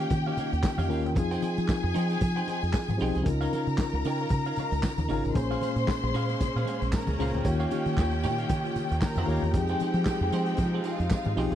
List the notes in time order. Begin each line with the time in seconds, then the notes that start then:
Already playing: D#3 A#3 C#4 F4 G4 G5
0.00 D#4 G4 C#5 F5
0.10 D#3, muted clean electric guitar stroke, kick, closed hi-hat, tambourine, muted conga, low conga
0.26 D#4 G4 C#5 F5
0.37 D#4 G4 C#5 F5, closed hi-hat, tambourine, muted conga, low conga
0.53 D#2, muted clean electric guitar stroke, closed hi-hat
0.63 muted clean electric guitar stroke, kick, snare, clap, tambourine, high conga
0.77 F2 D#4 G4 C#5 F5, closed hi-hat, tambourine, high conga
0.88 D#2 D#3 A#3 C#4 D#4 F4 G4 A#4 C#5, open hi-hat
0.92 F5
1.05 E2, muted clean electric guitar stroke, closed hi-hat
1.15 F2 F3 C4 D#4 F4 G#4 G#5, muted clean electric guitar stroke, kick, closed hi-hat, tambourine, muted conga
1.31 D#4 G#4 C5 G5, closed hi-hat, tambourine
1.42 D#4 G#4 C5 G5, closed hi-hat, tambourine, muted conga
1.57 F3, muted clean electric guitar stroke, closed hi-hat, tambourine
1.68 muted clean electric guitar stroke, kick, snare, clap, tambourine, high conga
1.83 F2, muted clean electric guitar stroke
1.95 F3 D#4 G#4 C5 G5, closed hi-hat, tambourine
2.09 D#4 G#4 C5 G5, closed hi-hat
2.21 F3, muted clean electric guitar stroke, kick, closed hi-hat, tambourine, muted conga, low conga
2.36 D#4 G#4 C5 G5, closed hi-hat
2.47 D#4 G#4 C5 G5, closed hi-hat, tambourine, muted conga
2.62 F2, muted clean electric guitar stroke, closed hi-hat, tambourine
2.73 muted clean electric guitar stroke, kick, snare, clap, tambourine, high conga
2.88 G#2, muted clean electric guitar stroke, tambourine, high conga
2.97 F3 C4 D#4 G4 G#4, snare, open hi-hat
3.02 B1 G#4 C5 G5
3.15 C2 D#4 G#4 C5 G#5, closed hi-hat
3.22 C#2 C#3 C#4 D#4 F4 A#4, kick, closed hi-hat, muted conga
3.27 A#4 A#5, muted clean electric guitar stroke, tambourine
3.41 D#4 A#4 C#5 F5, closed hi-hat, tambourine
3.53 D#4 A#4 C#5 F5, closed hi-hat, tambourine, muted conga
3.67 C#3, muted clean electric guitar stroke, closed hi-hat, tambourine
3.78 muted clean electric guitar stroke, kick, snare, clap, tambourine, high conga
3.93 C#2, muted clean electric guitar stroke
4.04 C#3 D#4 A#4 C#5 G5, open hi-hat, tambourine
4.18 A#4 C#5 F5, closed hi-hat
4.22 D#4
4.29 C#3, muted clean electric guitar stroke, kick, closed hi-hat, tambourine, muted conga, low conga
4.45 D#4 A#4 C#5 F5, closed hi-hat
4.56 D#4 A#4 C#5 F5, closed hi-hat, tambourine, muted conga, low conga
4.72 C#2, muted clean electric guitar stroke, closed hi-hat, tambourine
4.83 muted clean electric guitar stroke, kick, snare, clap, tambourine, high conga
4.98 D#2, muted clean electric guitar stroke, closed hi-hat, tambourine, high conga
5.09 G#1 C#3 C#4 D#4 F4 A#4 C#5 F5, snare, open hi-hat
5.24 A1, muted clean electric guitar stroke, closed hi-hat, tambourine
5.34 A#1 A#2 G#3 A#3 C#4 G#4 C5 C6, muted clean electric guitar stroke, kick, closed hi-hat, tambourine, muted conga
5.51 C#4 G#4 C5 F5, tambourine
5.62 C#4 G#4 C5 F5, closed hi-hat, tambourine, muted conga
5.76 A#2, muted clean electric guitar stroke, closed hi-hat, tambourine
5.88 muted clean electric guitar stroke, kick, snare, clap, tambourine, high conga
6.03 A#1, muted clean electric guitar stroke
6.14 A#2 C#4 G#4 C5 F5, closed hi-hat, tambourine
6.29 C#4 G#4 C5 F5, closed hi-hat
6.40 muted clean electric guitar stroke, kick, closed hi-hat, tambourine, muted conga, low conga
6.56 A#2 C#4 G#4 C5 F5, closed hi-hat
6.65 C#4 G#4 C5 F5, closed hi-hat, tambourine, muted conga
6.81 A#1, muted clean electric guitar stroke, closed hi-hat, tambourine
6.92 A#4 A#5, muted clean electric guitar stroke, kick, snare, clap, tambourine, high conga
7.07 C#2, muted clean electric guitar stroke, closed hi-hat, tambourine, high conga
7.18 C#2 A#2 A#3 C#4 G#4 C5, snare, open hi-hat
7.22 F5
7.34 D2 C#4 G#4 C5 G5, closed hi-hat
7.44 D#2 D#3 A#3 F4 G4 C#5 G5, muted clean electric guitar stroke, kick, closed hi-hat, tambourine, muted conga
7.60 D#4 G4 C#5 F5, closed hi-hat, tambourine
7.71 D#4 G4 C#5 F5, closed hi-hat, tambourine, muted conga
7.85 D#3, closed hi-hat, tambourine
7.97 D#2, muted clean electric guitar stroke, kick, snare, clap, tambourine, high conga
8.11 muted clean electric guitar stroke, closed hi-hat
8.23 A#2 D#4 G4 C#5 G5, closed hi-hat, tambourine
8.38 D#4 G4 C#5 F5, closed hi-hat
8.49 D#3, muted clean electric guitar stroke, kick, closed hi-hat, tambourine, muted conga, low conga
8.64 muted clean electric guitar stroke, closed hi-hat
8.76 closed hi-hat, tambourine, muted conga, low conga
8.89 D#2, muted clean electric guitar stroke, closed hi-hat, tambourine
9.01 A#4 A#5, muted clean electric guitar stroke, kick, snare, clap, tambourine, high conga
9.16 F2 D#4 G4 C#5 F5, tambourine, high conga
9.26 D#2 D#3 A#3 D#4 F4 G4 C#5, open hi-hat
9.30 C#5 F5
9.42 E2, muted clean electric guitar stroke, closed hi-hat
9.53 F2 F3 G#3 C4 D#4 G4 G#4 G5, muted clean electric guitar stroke, kick, closed hi-hat, tambourine, muted conga
9.68 D#4 G#4 C5 G5, closed hi-hat, tambourine
9.80 D#4 G#4 C5 G5, closed hi-hat, tambourine, muted conga
9.93 F3, muted clean electric guitar stroke, closed hi-hat, tambourine
10.05 muted clean electric guitar stroke, kick, snare, clap, tambourine, high conga
10.21 F2, muted clean electric guitar stroke
10.32 F3 D#4 G#4 C5 G5, closed hi-hat, tambourine
10.46 D#4 G#4 C5 G5, closed hi-hat
10.57 F3, muted clean electric guitar stroke, kick, closed hi-hat, tambourine, muted conga, low conga
10.73 D#4 G#4 C5 G5
10.84 D#4 F4 G#4 C5 F5 G5, closed hi-hat, tambourine
10.98 F2, muted clean electric guitar stroke, closed hi-hat, tambourine
11.10 muted clean electric guitar stroke, kick, snare, clap, tambourine, high conga
11.24 G#2, muted clean electric guitar stroke, closed hi-hat, tambourine, high conga
11.36 B1 F3 C4 D#4 G4 G#4 C5 G5, snare, open hi-hat
11.51 C2 C5 G#5, closed hi-hat